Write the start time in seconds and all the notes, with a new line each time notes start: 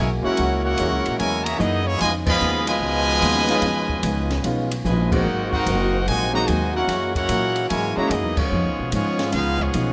Already playing: B1 E3 F#3 G#3 A#3 F#4 G#4
0.00 E4 A#4
0.22 G#3 A#3 C#4 E4 F#4 A#4 C#5 F#5, muted upright bass stroke
0.37 C#2 F#3 A#3 E4 G#4, ride
0.63 A#3 C#4 E4 F#4 A#4 C#5 F#5
0.78 D#2 F#3 G#3 A#3 C#4 E4 F#4 G#4, hi-hat pedal, ride
0.92 C#2
1.06 A#1, ride
1.18 E2 C#3 E3 F#3 G#3 A#3 E4 G#4 A#4 C#5 G#5, ride
1.44 C#3 E3 A#3 G#4 C#5 E5 A#5, ride
1.57 F#2 F#3 A#3 B3 D#4 E4 G#4 D#5, hi-hat pedal
1.85 E3 A#3 C#4 E4 G#4 C#5
1.97 F2 B2 C#3 F3 G#3 B3 C#4 F4 B4 D#5, ride
2.01 D#3 B3 D#4 G#5
2.24 F3 G#3 B3, kick, crash
2.28 G#4 D#5 F5 B5
2.40 D#2 C#3 F3 B3 D#4, hi-hat pedal
2.63 B2 F3 G#3, ride
2.68 F4 B4 D#5 G#5
2.80 C#2 C#3 F3 B3 D#4
3.22 D#2 C#3 F3 B3 D#4, hi-hat pedal, ride
3.35 snare
3.48 G#3 B3 C#4 D#4 F4, snare, ride
3.62 F2 C#3 F3 B3 D#4, ride
3.90 kick
4.03 C#2 C#3 F3 B3 D#4, hi-hat pedal, ride
4.30 snare, ride
4.43 B1 C#3 F3 G#3 B3 C#4 D#4 F4, ride
4.71 ride
4.83 A#1 B2 C#3 F3 G#3 B3 F4 B4 D#5 G#5, hi-hat pedal
4.87 D#4
5.10 G#3 A#3 C4 D#4 F#4 A#4 C5 F#5, kick, crash
5.25 G#1 G#2 C3 F#3 G#3 A#3 C4 F#4
5.50 C4 D#4 F#4 A#4 C5 F#5, kick
5.66 F#1 G#2 F#3 A#3 C4, hi-hat pedal, ride
6.05 A#1 G#2 C3 D#3 F#3 G#3 A#3 C4 F#4 C5 D#5 G#5, ride
6.31 D#3 F#3 G#3 A#3 C4 D#4 F#4 C5 D#5 A#5
6.46 D#2 G#2 C3 D#3 F#3 G#3 A#3 C4 F#4 C5 D#5 G#5, hi-hat pedal, ride
6.73 A#3 C#4 E4 F#4 A#4 C#5 F#5
6.88 F#2 E3 F#3 A#3 E4 G#4, snare, ride
7.14 A#3 C#4 E4 F#4 A#4 C#5 F#5, kick, ride
7.29 A#2 F#3 A#3 E4 G#4, hi-hat pedal, ride
7.56 ride
7.69 G#2 C#3 E3 F#3 G#3 A#3 E4 G#4 A#4 C#5 G#5, ride
7.96 C#3 E3 G#3 A#3 C#4 E4 F#4 G#4 C#5 E5 A#5, muted upright bass stroke
8.10 F#2 F#3 A#3 B3 D#4 E4 G#4 D#5, hi-hat pedal, ride
8.24 E2
8.37 C#2 F3 G#3 B3 C#4 F4 G#4 C#5, kick, crash
8.51 F2 C#3 D#3 F3 B3 C#4 D#4 F4
8.65 C#2
8.79 B1
8.91 G#2 C#3 F3 G#3 B3 C#4 D#4 F4 G#4 C#5, hi-hat pedal, ride
9.19 snare, ride
9.32 C#2 C#3 F3 G#3 B3 D#4 F4 G#4 B4 F5, snare, ride
9.59 F3 G#3 B3 C#4 F4 G#4 C#5, kick
9.73 B1 C#3 F3 B3 D#4, hi-hat pedal, ride